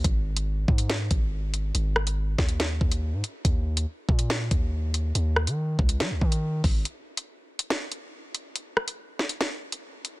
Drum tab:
HH |x--x---xx-x---x-|x--x---xx--x--x-|x--x---xx-x---x-|x--x---xx--x--o-|
SD |--------o-------|--r---o-o-------|--------o-------|--r-----o-------|
BD |o-----o---o-----|------o---o-----|o-----o---o-----|------o---o---o-|

HH |x--x---xx-x---x-|x--x---xx--x--x-|
SD |--------o-------|--r---o-o-------|
BD |----------------|----------------|